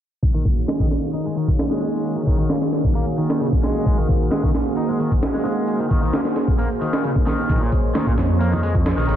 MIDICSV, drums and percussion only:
0, 0, Header, 1, 2, 480
1, 0, Start_track
1, 0, Tempo, 454545
1, 239, Time_signature, 4, 2, 24, 8
1, 9675, End_track
2, 0, Start_track
2, 0, Title_t, "Drums"
2, 237, Note_on_c, 9, 42, 82
2, 238, Note_on_c, 9, 36, 98
2, 343, Note_off_c, 9, 42, 0
2, 344, Note_off_c, 9, 36, 0
2, 477, Note_on_c, 9, 42, 61
2, 478, Note_on_c, 9, 36, 84
2, 583, Note_off_c, 9, 42, 0
2, 584, Note_off_c, 9, 36, 0
2, 720, Note_on_c, 9, 38, 102
2, 720, Note_on_c, 9, 42, 81
2, 825, Note_off_c, 9, 38, 0
2, 825, Note_off_c, 9, 42, 0
2, 843, Note_on_c, 9, 36, 84
2, 948, Note_off_c, 9, 36, 0
2, 960, Note_on_c, 9, 38, 50
2, 960, Note_on_c, 9, 42, 62
2, 1066, Note_off_c, 9, 38, 0
2, 1066, Note_off_c, 9, 42, 0
2, 1200, Note_on_c, 9, 42, 81
2, 1306, Note_off_c, 9, 42, 0
2, 1442, Note_on_c, 9, 42, 60
2, 1548, Note_off_c, 9, 42, 0
2, 1563, Note_on_c, 9, 36, 83
2, 1668, Note_off_c, 9, 36, 0
2, 1680, Note_on_c, 9, 38, 107
2, 1680, Note_on_c, 9, 42, 80
2, 1786, Note_off_c, 9, 38, 0
2, 1786, Note_off_c, 9, 42, 0
2, 1804, Note_on_c, 9, 38, 41
2, 1910, Note_off_c, 9, 38, 0
2, 1919, Note_on_c, 9, 42, 62
2, 2025, Note_off_c, 9, 42, 0
2, 2158, Note_on_c, 9, 42, 80
2, 2264, Note_off_c, 9, 42, 0
2, 2284, Note_on_c, 9, 42, 38
2, 2389, Note_off_c, 9, 42, 0
2, 2396, Note_on_c, 9, 42, 61
2, 2398, Note_on_c, 9, 36, 88
2, 2502, Note_off_c, 9, 42, 0
2, 2503, Note_off_c, 9, 36, 0
2, 2636, Note_on_c, 9, 38, 104
2, 2636, Note_on_c, 9, 42, 80
2, 2742, Note_off_c, 9, 38, 0
2, 2742, Note_off_c, 9, 42, 0
2, 2761, Note_on_c, 9, 38, 46
2, 2867, Note_off_c, 9, 38, 0
2, 2880, Note_on_c, 9, 38, 49
2, 2880, Note_on_c, 9, 42, 62
2, 2986, Note_off_c, 9, 38, 0
2, 2986, Note_off_c, 9, 42, 0
2, 3003, Note_on_c, 9, 36, 88
2, 3108, Note_off_c, 9, 36, 0
2, 3119, Note_on_c, 9, 46, 73
2, 3225, Note_off_c, 9, 46, 0
2, 3360, Note_on_c, 9, 42, 61
2, 3465, Note_off_c, 9, 42, 0
2, 3483, Note_on_c, 9, 38, 103
2, 3588, Note_off_c, 9, 38, 0
2, 3599, Note_on_c, 9, 42, 81
2, 3705, Note_off_c, 9, 42, 0
2, 3723, Note_on_c, 9, 36, 85
2, 3828, Note_off_c, 9, 36, 0
2, 3840, Note_on_c, 9, 38, 40
2, 3840, Note_on_c, 9, 42, 64
2, 3945, Note_off_c, 9, 38, 0
2, 3945, Note_off_c, 9, 42, 0
2, 4076, Note_on_c, 9, 42, 81
2, 4077, Note_on_c, 9, 36, 101
2, 4182, Note_off_c, 9, 42, 0
2, 4183, Note_off_c, 9, 36, 0
2, 4316, Note_on_c, 9, 42, 65
2, 4318, Note_on_c, 9, 36, 86
2, 4422, Note_off_c, 9, 42, 0
2, 4423, Note_off_c, 9, 36, 0
2, 4555, Note_on_c, 9, 38, 104
2, 4555, Note_on_c, 9, 42, 79
2, 4661, Note_off_c, 9, 38, 0
2, 4661, Note_off_c, 9, 42, 0
2, 4682, Note_on_c, 9, 36, 90
2, 4787, Note_off_c, 9, 36, 0
2, 4800, Note_on_c, 9, 38, 53
2, 4800, Note_on_c, 9, 42, 61
2, 4905, Note_off_c, 9, 38, 0
2, 4905, Note_off_c, 9, 42, 0
2, 5040, Note_on_c, 9, 42, 79
2, 5146, Note_off_c, 9, 42, 0
2, 5280, Note_on_c, 9, 42, 61
2, 5385, Note_off_c, 9, 42, 0
2, 5403, Note_on_c, 9, 36, 85
2, 5508, Note_off_c, 9, 36, 0
2, 5519, Note_on_c, 9, 38, 106
2, 5519, Note_on_c, 9, 42, 81
2, 5625, Note_off_c, 9, 38, 0
2, 5625, Note_off_c, 9, 42, 0
2, 5643, Note_on_c, 9, 38, 44
2, 5749, Note_off_c, 9, 38, 0
2, 5760, Note_on_c, 9, 42, 63
2, 5865, Note_off_c, 9, 42, 0
2, 5999, Note_on_c, 9, 42, 80
2, 6105, Note_off_c, 9, 42, 0
2, 6123, Note_on_c, 9, 42, 40
2, 6229, Note_off_c, 9, 42, 0
2, 6238, Note_on_c, 9, 36, 87
2, 6238, Note_on_c, 9, 42, 63
2, 6343, Note_off_c, 9, 42, 0
2, 6344, Note_off_c, 9, 36, 0
2, 6478, Note_on_c, 9, 38, 107
2, 6478, Note_on_c, 9, 42, 82
2, 6583, Note_off_c, 9, 38, 0
2, 6583, Note_off_c, 9, 42, 0
2, 6601, Note_on_c, 9, 38, 48
2, 6706, Note_off_c, 9, 38, 0
2, 6715, Note_on_c, 9, 38, 48
2, 6715, Note_on_c, 9, 42, 63
2, 6821, Note_off_c, 9, 38, 0
2, 6821, Note_off_c, 9, 42, 0
2, 6842, Note_on_c, 9, 36, 88
2, 6948, Note_off_c, 9, 36, 0
2, 6960, Note_on_c, 9, 46, 75
2, 7065, Note_off_c, 9, 46, 0
2, 7198, Note_on_c, 9, 42, 62
2, 7304, Note_off_c, 9, 42, 0
2, 7320, Note_on_c, 9, 38, 108
2, 7425, Note_off_c, 9, 38, 0
2, 7434, Note_on_c, 9, 42, 84
2, 7540, Note_off_c, 9, 42, 0
2, 7560, Note_on_c, 9, 36, 87
2, 7666, Note_off_c, 9, 36, 0
2, 7675, Note_on_c, 9, 38, 40
2, 7675, Note_on_c, 9, 42, 66
2, 7781, Note_off_c, 9, 38, 0
2, 7781, Note_off_c, 9, 42, 0
2, 7913, Note_on_c, 9, 42, 80
2, 7915, Note_on_c, 9, 36, 105
2, 8019, Note_off_c, 9, 42, 0
2, 8021, Note_off_c, 9, 36, 0
2, 8155, Note_on_c, 9, 36, 86
2, 8155, Note_on_c, 9, 42, 63
2, 8260, Note_off_c, 9, 42, 0
2, 8261, Note_off_c, 9, 36, 0
2, 8396, Note_on_c, 9, 38, 105
2, 8396, Note_on_c, 9, 42, 79
2, 8398, Note_on_c, 9, 63, 60
2, 8502, Note_off_c, 9, 38, 0
2, 8502, Note_off_c, 9, 42, 0
2, 8504, Note_off_c, 9, 63, 0
2, 8520, Note_on_c, 9, 36, 86
2, 8625, Note_off_c, 9, 36, 0
2, 8635, Note_on_c, 9, 38, 52
2, 8635, Note_on_c, 9, 42, 64
2, 8740, Note_off_c, 9, 38, 0
2, 8740, Note_off_c, 9, 42, 0
2, 8877, Note_on_c, 9, 42, 84
2, 8983, Note_off_c, 9, 42, 0
2, 9010, Note_on_c, 9, 64, 72
2, 9115, Note_on_c, 9, 42, 64
2, 9116, Note_off_c, 9, 64, 0
2, 9220, Note_off_c, 9, 42, 0
2, 9240, Note_on_c, 9, 36, 91
2, 9346, Note_off_c, 9, 36, 0
2, 9356, Note_on_c, 9, 38, 109
2, 9356, Note_on_c, 9, 42, 81
2, 9461, Note_off_c, 9, 38, 0
2, 9461, Note_off_c, 9, 42, 0
2, 9482, Note_on_c, 9, 38, 43
2, 9588, Note_off_c, 9, 38, 0
2, 9596, Note_on_c, 9, 42, 66
2, 9675, Note_off_c, 9, 42, 0
2, 9675, End_track
0, 0, End_of_file